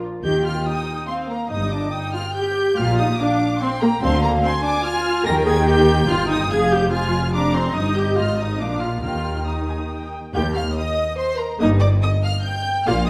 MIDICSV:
0, 0, Header, 1, 6, 480
1, 0, Start_track
1, 0, Key_signature, -3, "major"
1, 0, Tempo, 421644
1, 282, Time_signature, 3, 2, 24, 8
1, 3638, Tempo, 414938
1, 8918, Tempo, 430725
1, 11798, Tempo, 418410
1, 14958, End_track
2, 0, Start_track
2, 0, Title_t, "Violin section"
2, 0, Program_c, 0, 48
2, 276, Note_on_c, 0, 91, 96
2, 503, Note_off_c, 0, 91, 0
2, 510, Note_on_c, 0, 89, 81
2, 752, Note_off_c, 0, 89, 0
2, 756, Note_on_c, 0, 87, 87
2, 1217, Note_on_c, 0, 84, 100
2, 1230, Note_off_c, 0, 87, 0
2, 1308, Note_off_c, 0, 84, 0
2, 1469, Note_on_c, 0, 82, 75
2, 1704, Note_on_c, 0, 87, 99
2, 1713, Note_off_c, 0, 82, 0
2, 1942, Note_on_c, 0, 86, 86
2, 1950, Note_off_c, 0, 87, 0
2, 2184, Note_on_c, 0, 87, 94
2, 2194, Note_off_c, 0, 86, 0
2, 2428, Note_on_c, 0, 89, 97
2, 2435, Note_off_c, 0, 87, 0
2, 2665, Note_on_c, 0, 91, 105
2, 2671, Note_off_c, 0, 89, 0
2, 3142, Note_off_c, 0, 91, 0
2, 3142, Note_on_c, 0, 89, 109
2, 3380, Note_on_c, 0, 87, 104
2, 3390, Note_off_c, 0, 89, 0
2, 3624, Note_off_c, 0, 87, 0
2, 3626, Note_on_c, 0, 86, 102
2, 4106, Note_on_c, 0, 84, 107
2, 4113, Note_off_c, 0, 86, 0
2, 4352, Note_off_c, 0, 84, 0
2, 4356, Note_on_c, 0, 82, 107
2, 4591, Note_on_c, 0, 84, 127
2, 4596, Note_off_c, 0, 82, 0
2, 4827, Note_off_c, 0, 84, 0
2, 4834, Note_on_c, 0, 82, 101
2, 4926, Note_off_c, 0, 82, 0
2, 5070, Note_on_c, 0, 84, 123
2, 5300, Note_on_c, 0, 86, 118
2, 5304, Note_off_c, 0, 84, 0
2, 5534, Note_on_c, 0, 89, 125
2, 5540, Note_off_c, 0, 86, 0
2, 6011, Note_on_c, 0, 94, 127
2, 6021, Note_off_c, 0, 89, 0
2, 6104, Note_off_c, 0, 94, 0
2, 6259, Note_on_c, 0, 92, 117
2, 6490, Note_on_c, 0, 91, 121
2, 6499, Note_off_c, 0, 92, 0
2, 6971, Note_off_c, 0, 91, 0
2, 6986, Note_on_c, 0, 89, 122
2, 7230, Note_off_c, 0, 89, 0
2, 7230, Note_on_c, 0, 87, 116
2, 7466, Note_on_c, 0, 92, 115
2, 7467, Note_off_c, 0, 87, 0
2, 7709, Note_off_c, 0, 92, 0
2, 7710, Note_on_c, 0, 91, 109
2, 7939, Note_on_c, 0, 89, 107
2, 7951, Note_off_c, 0, 91, 0
2, 8419, Note_off_c, 0, 89, 0
2, 8425, Note_on_c, 0, 86, 109
2, 8663, Note_on_c, 0, 84, 97
2, 8666, Note_off_c, 0, 86, 0
2, 8894, Note_on_c, 0, 87, 110
2, 8911, Note_off_c, 0, 84, 0
2, 9140, Note_off_c, 0, 87, 0
2, 9148, Note_on_c, 0, 91, 96
2, 9381, Note_on_c, 0, 89, 98
2, 9385, Note_off_c, 0, 91, 0
2, 9615, Note_on_c, 0, 87, 91
2, 9616, Note_off_c, 0, 89, 0
2, 9852, Note_on_c, 0, 86, 91
2, 9857, Note_off_c, 0, 87, 0
2, 10081, Note_on_c, 0, 89, 80
2, 10096, Note_off_c, 0, 86, 0
2, 10311, Note_off_c, 0, 89, 0
2, 10324, Note_on_c, 0, 89, 80
2, 10808, Note_off_c, 0, 89, 0
2, 10813, Note_on_c, 0, 87, 64
2, 11549, Note_off_c, 0, 87, 0
2, 11789, Note_on_c, 0, 91, 98
2, 12020, Note_off_c, 0, 91, 0
2, 12030, Note_on_c, 0, 89, 97
2, 12268, Note_on_c, 0, 87, 99
2, 12274, Note_off_c, 0, 89, 0
2, 12747, Note_off_c, 0, 87, 0
2, 12754, Note_on_c, 0, 84, 111
2, 12989, Note_on_c, 0, 82, 87
2, 12994, Note_off_c, 0, 84, 0
2, 13230, Note_on_c, 0, 87, 99
2, 13237, Note_off_c, 0, 82, 0
2, 13321, Note_off_c, 0, 87, 0
2, 13467, Note_on_c, 0, 86, 103
2, 13559, Note_off_c, 0, 86, 0
2, 13713, Note_on_c, 0, 87, 105
2, 13805, Note_off_c, 0, 87, 0
2, 13962, Note_on_c, 0, 89, 113
2, 14180, Note_on_c, 0, 91, 111
2, 14196, Note_off_c, 0, 89, 0
2, 14659, Note_off_c, 0, 91, 0
2, 14669, Note_on_c, 0, 89, 107
2, 14899, Note_on_c, 0, 87, 106
2, 14908, Note_off_c, 0, 89, 0
2, 14958, Note_off_c, 0, 87, 0
2, 14958, End_track
3, 0, Start_track
3, 0, Title_t, "Violin section"
3, 0, Program_c, 1, 48
3, 277, Note_on_c, 1, 79, 82
3, 1195, Note_off_c, 1, 79, 0
3, 1229, Note_on_c, 1, 77, 70
3, 1709, Note_off_c, 1, 77, 0
3, 1716, Note_on_c, 1, 75, 78
3, 2191, Note_off_c, 1, 75, 0
3, 2191, Note_on_c, 1, 79, 80
3, 3135, Note_off_c, 1, 79, 0
3, 3155, Note_on_c, 1, 77, 90
3, 3625, Note_off_c, 1, 77, 0
3, 3639, Note_on_c, 1, 77, 83
3, 4110, Note_off_c, 1, 77, 0
3, 4125, Note_on_c, 1, 79, 95
3, 4591, Note_off_c, 1, 79, 0
3, 4591, Note_on_c, 1, 77, 98
3, 5070, Note_off_c, 1, 77, 0
3, 5075, Note_on_c, 1, 80, 115
3, 6012, Note_on_c, 1, 79, 105
3, 6030, Note_off_c, 1, 80, 0
3, 7464, Note_off_c, 1, 79, 0
3, 7466, Note_on_c, 1, 77, 94
3, 7942, Note_on_c, 1, 80, 84
3, 7949, Note_off_c, 1, 77, 0
3, 8420, Note_off_c, 1, 80, 0
3, 8426, Note_on_c, 1, 82, 87
3, 8903, Note_off_c, 1, 82, 0
3, 8928, Note_on_c, 1, 75, 90
3, 9859, Note_on_c, 1, 77, 71
3, 9867, Note_off_c, 1, 75, 0
3, 10341, Note_off_c, 1, 77, 0
3, 10343, Note_on_c, 1, 79, 64
3, 10770, Note_off_c, 1, 79, 0
3, 10819, Note_on_c, 1, 82, 67
3, 10908, Note_off_c, 1, 82, 0
3, 11072, Note_on_c, 1, 80, 58
3, 11162, Note_off_c, 1, 80, 0
3, 11301, Note_on_c, 1, 79, 56
3, 11775, Note_off_c, 1, 79, 0
3, 11788, Note_on_c, 1, 79, 101
3, 11880, Note_off_c, 1, 79, 0
3, 12033, Note_on_c, 1, 77, 82
3, 12125, Note_off_c, 1, 77, 0
3, 12279, Note_on_c, 1, 75, 90
3, 12753, Note_off_c, 1, 75, 0
3, 12757, Note_on_c, 1, 72, 99
3, 12996, Note_off_c, 1, 72, 0
3, 13004, Note_on_c, 1, 70, 81
3, 13245, Note_off_c, 1, 70, 0
3, 13249, Note_on_c, 1, 75, 107
3, 13341, Note_off_c, 1, 75, 0
3, 13470, Note_on_c, 1, 74, 89
3, 13562, Note_off_c, 1, 74, 0
3, 13719, Note_on_c, 1, 75, 94
3, 13955, Note_off_c, 1, 75, 0
3, 13974, Note_on_c, 1, 77, 92
3, 14066, Note_off_c, 1, 77, 0
3, 14196, Note_on_c, 1, 79, 95
3, 14667, Note_off_c, 1, 79, 0
3, 14672, Note_on_c, 1, 77, 108
3, 14914, Note_off_c, 1, 77, 0
3, 14923, Note_on_c, 1, 75, 92
3, 14958, Note_off_c, 1, 75, 0
3, 14958, End_track
4, 0, Start_track
4, 0, Title_t, "Viola section"
4, 0, Program_c, 2, 48
4, 274, Note_on_c, 2, 67, 83
4, 502, Note_off_c, 2, 67, 0
4, 516, Note_on_c, 2, 65, 75
4, 760, Note_off_c, 2, 65, 0
4, 763, Note_on_c, 2, 63, 81
4, 1242, Note_off_c, 2, 63, 0
4, 1244, Note_on_c, 2, 60, 88
4, 1480, Note_off_c, 2, 60, 0
4, 1484, Note_on_c, 2, 58, 71
4, 1725, Note_on_c, 2, 63, 90
4, 1726, Note_off_c, 2, 58, 0
4, 1966, Note_off_c, 2, 63, 0
4, 1966, Note_on_c, 2, 62, 77
4, 2201, Note_off_c, 2, 62, 0
4, 2211, Note_on_c, 2, 63, 80
4, 2444, Note_off_c, 2, 63, 0
4, 2446, Note_on_c, 2, 65, 81
4, 2537, Note_off_c, 2, 65, 0
4, 2683, Note_on_c, 2, 67, 97
4, 3151, Note_off_c, 2, 67, 0
4, 3159, Note_on_c, 2, 65, 102
4, 3398, Note_on_c, 2, 63, 87
4, 3399, Note_off_c, 2, 65, 0
4, 3489, Note_off_c, 2, 63, 0
4, 3633, Note_on_c, 2, 62, 94
4, 4107, Note_off_c, 2, 62, 0
4, 4118, Note_on_c, 2, 60, 105
4, 4211, Note_off_c, 2, 60, 0
4, 4348, Note_on_c, 2, 58, 88
4, 4441, Note_off_c, 2, 58, 0
4, 4587, Note_on_c, 2, 60, 102
4, 4825, Note_off_c, 2, 60, 0
4, 4826, Note_on_c, 2, 58, 97
4, 5063, Note_off_c, 2, 58, 0
4, 5068, Note_on_c, 2, 60, 102
4, 5161, Note_off_c, 2, 60, 0
4, 5298, Note_on_c, 2, 62, 96
4, 5534, Note_on_c, 2, 65, 111
4, 5539, Note_off_c, 2, 62, 0
4, 6012, Note_off_c, 2, 65, 0
4, 6015, Note_on_c, 2, 70, 115
4, 6250, Note_on_c, 2, 68, 104
4, 6262, Note_off_c, 2, 70, 0
4, 6343, Note_off_c, 2, 68, 0
4, 6495, Note_on_c, 2, 67, 100
4, 6973, Note_on_c, 2, 65, 114
4, 6974, Note_off_c, 2, 67, 0
4, 7213, Note_on_c, 2, 63, 90
4, 7218, Note_off_c, 2, 65, 0
4, 7458, Note_off_c, 2, 63, 0
4, 7463, Note_on_c, 2, 68, 115
4, 7703, Note_off_c, 2, 68, 0
4, 7703, Note_on_c, 2, 67, 98
4, 7942, Note_on_c, 2, 65, 98
4, 7948, Note_off_c, 2, 67, 0
4, 8420, Note_off_c, 2, 65, 0
4, 8424, Note_on_c, 2, 62, 93
4, 8666, Note_off_c, 2, 62, 0
4, 8670, Note_on_c, 2, 60, 87
4, 8907, Note_on_c, 2, 63, 98
4, 8915, Note_off_c, 2, 60, 0
4, 9145, Note_on_c, 2, 67, 84
4, 9147, Note_off_c, 2, 63, 0
4, 9379, Note_off_c, 2, 67, 0
4, 9386, Note_on_c, 2, 65, 79
4, 9623, Note_off_c, 2, 65, 0
4, 9623, Note_on_c, 2, 63, 73
4, 9856, Note_off_c, 2, 63, 0
4, 9861, Note_on_c, 2, 62, 78
4, 10099, Note_on_c, 2, 65, 67
4, 10101, Note_off_c, 2, 62, 0
4, 10321, Note_off_c, 2, 65, 0
4, 10334, Note_on_c, 2, 65, 72
4, 10813, Note_off_c, 2, 65, 0
4, 10832, Note_on_c, 2, 63, 57
4, 11544, Note_off_c, 2, 63, 0
4, 11793, Note_on_c, 2, 67, 79
4, 11798, Note_on_c, 2, 58, 75
4, 12022, Note_off_c, 2, 67, 0
4, 12025, Note_off_c, 2, 58, 0
4, 13241, Note_on_c, 2, 63, 83
4, 13243, Note_on_c, 2, 58, 76
4, 13466, Note_off_c, 2, 63, 0
4, 13468, Note_off_c, 2, 58, 0
4, 14682, Note_on_c, 2, 58, 84
4, 14683, Note_on_c, 2, 65, 85
4, 14902, Note_off_c, 2, 58, 0
4, 14903, Note_off_c, 2, 65, 0
4, 14958, End_track
5, 0, Start_track
5, 0, Title_t, "Cello section"
5, 0, Program_c, 3, 48
5, 273, Note_on_c, 3, 51, 75
5, 679, Note_off_c, 3, 51, 0
5, 1717, Note_on_c, 3, 43, 80
5, 2121, Note_off_c, 3, 43, 0
5, 3155, Note_on_c, 3, 46, 92
5, 3555, Note_off_c, 3, 46, 0
5, 4601, Note_on_c, 3, 50, 97
5, 4995, Note_off_c, 3, 50, 0
5, 6027, Note_on_c, 3, 51, 96
5, 6943, Note_off_c, 3, 51, 0
5, 6970, Note_on_c, 3, 43, 89
5, 7458, Note_on_c, 3, 41, 94
5, 7462, Note_off_c, 3, 43, 0
5, 8881, Note_off_c, 3, 41, 0
5, 8917, Note_on_c, 3, 43, 81
5, 9377, Note_off_c, 3, 43, 0
5, 9388, Note_on_c, 3, 44, 75
5, 9862, Note_off_c, 3, 44, 0
5, 9867, Note_on_c, 3, 46, 68
5, 10342, Note_on_c, 3, 51, 62
5, 10345, Note_off_c, 3, 46, 0
5, 11569, Note_off_c, 3, 51, 0
5, 11798, Note_on_c, 3, 39, 88
5, 12204, Note_off_c, 3, 39, 0
5, 13234, Note_on_c, 3, 43, 91
5, 13639, Note_off_c, 3, 43, 0
5, 14684, Note_on_c, 3, 46, 95
5, 14958, Note_off_c, 3, 46, 0
5, 14958, End_track
6, 0, Start_track
6, 0, Title_t, "Double bass section"
6, 0, Program_c, 4, 48
6, 274, Note_on_c, 4, 39, 75
6, 679, Note_off_c, 4, 39, 0
6, 1722, Note_on_c, 4, 31, 78
6, 2124, Note_off_c, 4, 31, 0
6, 3163, Note_on_c, 4, 34, 86
6, 3559, Note_off_c, 4, 34, 0
6, 4587, Note_on_c, 4, 38, 101
6, 4988, Note_off_c, 4, 38, 0
6, 6020, Note_on_c, 4, 39, 95
6, 6939, Note_off_c, 4, 39, 0
6, 6979, Note_on_c, 4, 31, 83
6, 7460, Note_on_c, 4, 29, 85
6, 7467, Note_off_c, 4, 31, 0
6, 8883, Note_off_c, 4, 29, 0
6, 8909, Note_on_c, 4, 31, 79
6, 9374, Note_off_c, 4, 31, 0
6, 9382, Note_on_c, 4, 32, 72
6, 9859, Note_off_c, 4, 32, 0
6, 9861, Note_on_c, 4, 34, 70
6, 10335, Note_on_c, 4, 39, 60
6, 10342, Note_off_c, 4, 34, 0
6, 11565, Note_off_c, 4, 39, 0
6, 11794, Note_on_c, 4, 39, 90
6, 12201, Note_off_c, 4, 39, 0
6, 13239, Note_on_c, 4, 31, 90
6, 13641, Note_off_c, 4, 31, 0
6, 14669, Note_on_c, 4, 34, 96
6, 14958, Note_off_c, 4, 34, 0
6, 14958, End_track
0, 0, End_of_file